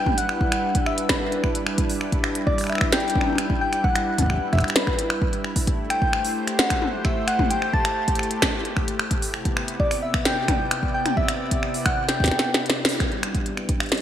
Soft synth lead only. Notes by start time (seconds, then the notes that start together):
Already playing: G5
0.18 F#5
0.87 E5
1.10 B4
2.47 D5
2.70 E5
2.92 G5
3.61 G5
3.84 F#5
4.53 E5
4.76 B4
5.90 G5
6.59 F#5
7.05 E5
7.28 F#5
7.50 G5
7.73 A5
9.80 D5
10.03 E5
10.25 G5
10.94 G5
11.17 E5
11.86 F#5
12.09 G5